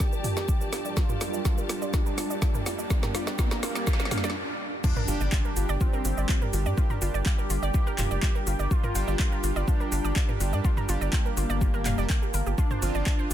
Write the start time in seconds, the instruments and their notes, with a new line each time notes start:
Already playing: analog polysynth G3 D4 G4, ambient pad G3 F4 A#4, analog synth lead G4, string section G4 D5 A5, riser
0.00 synth arpeggio sound F4, kick, snare, shaker
0.13 synth arpeggio sound A#4, shaker
0.24 synth arpeggio sound F4, mid tom, open hi-hat, shaker
0.37 synth arpeggio sound D5, snare, shaker
0.48 synth arpeggio sound F4, kick, shaker
0.61 synth arpeggio sound A#4, shaker
0.73 synth arpeggio sound F4, snare, open hi-hat, shaker
0.85 synth arpeggio sound D5, shaker
0.97 analog synth lead F4, synth arpeggio sound F4, kick, snare, shaker
1.09 synth arpeggio sound A#4, mid tom, shaker
1.21 analog polysynth G3 D4 G4, synth arpeggio sound F4, snare, open hi-hat, shaker
1.34 synth arpeggio sound D5, shaker
1.45 synth arpeggio sound F4, analog synth lead F4, kick, snare, shaker
1.58 synth arpeggio sound A#4, shaker
1.69 synth arpeggio sound F4, snare, open hi-hat, shaker
1.82 synth arpeggio sound D5, shaker
1.94 analog synth lead D4, synth arpeggio sound F4, kick, snare, shaker
2.06 synth arpeggio sound A#4, shaker
2.18 synth arpeggio sound F4, snare, open hi-hat, shaker
2.30 synth arpeggio sound D5, shaker
2.42 synth arpeggio sound F4, kick, snare, shaker
2.55 synth arpeggio sound A#4, mid tom, shaker
2.66 synth arpeggio sound F4, snare, open hi-hat, shaker
2.79 synth arpeggio sound D5, shaker
2.90 synth arpeggio sound F4, kick, snare, noise sweep, shaker
3.03 synth arpeggio sound A#4, snare, mid tom, shaker
3.15 analog polysynth G3 D4 G4, synth arpeggio sound F4, snare, open hi-hat, shaker
3.27 synth arpeggio sound D5, snare, shaker
3.39 analog synth lead A#3, synth arpeggio sound F4, kick, snare, shaker
3.51 synth arpeggio sound A#4, snare, shaker
3.63 synth arpeggio sound F4, snare, open hi-hat, shaker
3.75 synth arpeggio sound D5, snare, shaker
3.87 synth arpeggio sound F4, kick, snare, shaker
3.93 snare
4.00 synth arpeggio sound A#4, snare, shaker
4.05 snare
4.11 synth arpeggio sound F5, snare, mid tom, open hi-hat, shaker
4.18 snare
4.24 analog polysynth G3 D4 G4, synth arpeggio sound D5, snare, shaker
4.30 snare
4.84 analog synth lead D4, ambient pad F4 A#4 G5, synth arpeggio sound F4, kick, crash, impact, shaker
4.97 synth arpeggio sound A#4, mid tom, shaker
5.08 analog synth bass G1, analog polysynth G3 D4 G4, synth arpeggio sound F4, open hi-hat, shaker
5.21 analog synth bass G1, synth arpeggio sound D5, shaker
5.32 analog synth lead D4, synth arpeggio sound F4, kick, clap, shaker
5.45 synth arpeggio sound A#4, shaker
5.57 analog synth bass G1, synth arpeggio sound F4, open hi-hat, shaker
5.69 analog synth bass G1, synth arpeggio sound D5, shaker
5.81 analog synth lead C4, synth arpeggio sound F4, kick, shaker
5.93 synth arpeggio sound A#4, shaker
6.05 analog synth bass G1, synth arpeggio sound F4, open hi-hat, shaker
6.17 analog synth bass G1, synth arpeggio sound D5, shaker
6.29 synth arpeggio sound F4, kick, clap, shaker
6.42 synth arpeggio sound A#4, mid tom, shaker
6.53 analog synth bass G1, synth arpeggio sound F4, open hi-hat, shaker
6.66 analog synth bass G2, synth arpeggio sound D5, shaker
6.78 synth arpeggio sound F4, kick, shaker
6.90 synth arpeggio sound A#4, mid tom, shaker
7.02 analog synth bass G1, analog polysynth G3 D4 G4, synth arpeggio sound F4, open hi-hat, shaker
7.14 analog synth bass G1, synth arpeggio sound D5, shaker
7.26 synth arpeggio sound F4, analog synth lead G4, kick, clap, shaker
7.38 synth arpeggio sound A#4, shaker
7.50 analog synth bass G1, synth arpeggio sound F4, open hi-hat, shaker
7.63 analog synth bass G1, synth arpeggio sound D5, shaker
7.74 synth arpeggio sound F4, kick, shaker
7.87 synth arpeggio sound A#4, shaker
7.98 analog synth bass F1, synth arpeggio sound F4, clap, mid tom, open hi-hat, shaker
8.11 analog synth bass F1, synth arpeggio sound D5, shaker
8.23 synth arpeggio sound F4, kick, clap, shaker
8.35 synth arpeggio sound A#4, shaker
8.47 analog synth bass G1, synth arpeggio sound F4, open hi-hat, shaker
8.59 analog synth bass G1, synth arpeggio sound D5, shaker
8.71 synth arpeggio sound F4, analog synth lead F4, ambient pad A5, kick, shaker
8.84 synth arpeggio sound A#4, mid tom, shaker
8.95 analog synth bass G1, analog polysynth G3 D4 G4, synth arpeggio sound F4, open hi-hat, shaker
9.08 analog synth bass G1, synth arpeggio sound D5, shaker
9.19 synth arpeggio sound F4, analog synth lead F4, kick, clap, shaker
9.32 synth arpeggio sound A#4, shaker
9.44 analog synth bass G1, synth arpeggio sound F4, open hi-hat, shaker
9.56 analog synth bass G1, synth arpeggio sound D5, shaker
9.68 analog synth lead D4, synth arpeggio sound F4, kick, shaker
9.80 synth arpeggio sound A#4, shaker
9.92 analog synth bass G1, synth arpeggio sound F4, open hi-hat, shaker
10.04 analog synth bass G1, synth arpeggio sound D5, shaker
10.16 synth arpeggio sound F4, kick, clap, shaker
10.29 synth arpeggio sound A#4, mid tom, shaker
10.40 analog synth bass G1, synth arpeggio sound F4, open hi-hat, shaker
10.53 analog synth bass G2, synth arpeggio sound D5, shaker
10.65 synth arpeggio sound F4, kick, shaker
10.77 synth arpeggio sound A#4, mid tom, shaker
10.89 analog synth bass G1, analog polysynth G3 D4 G4, synth arpeggio sound F4, open hi-hat, shaker
11.01 analog synth bass G1, synth arpeggio sound D5, shaker
11.13 analog synth lead A#3, synth arpeggio sound F4, kick, clap, shaker
11.25 synth arpeggio sound A#4, shaker
11.37 analog synth bass G1, synth arpeggio sound F4, open hi-hat, shaker
11.50 analog synth bass G1, synth arpeggio sound D5, shaker
11.61 synth arpeggio sound F4, kick, shaker
11.74 synth arpeggio sound A#4, shaker
11.86 analog synth bass F1, synth arpeggio sound F5, clap, mid tom, open hi-hat, shaker
11.98 analog synth bass F1, analog polysynth G3 D4 G4, synth arpeggio sound D5, shaker
12.10 synth arpeggio sound G5, kick, clap, shaker
12.22 synth arpeggio sound G4, shaker
12.34 analog synth bass G1, synth arpeggio sound A#4, open hi-hat, shaker
12.46 analog synth bass G1, synth arpeggio sound G4, shaker
12.58 analog synth lead D4, synth arpeggio sound F4, ambient pad D5, kick, shaker
12.71 synth arpeggio sound C5, mid tom, shaker
12.82 analog synth bass G1, analog polysynth F3 C4 F4, synth arpeggio sound F4, open hi-hat, shaker
12.95 analog synth bass G1, synth arpeggio sound D5, shaker
13.06 analog synth lead D4, synth arpeggio sound F4, kick, clap, shaker
13.19 synth arpeggio sound C5, shaker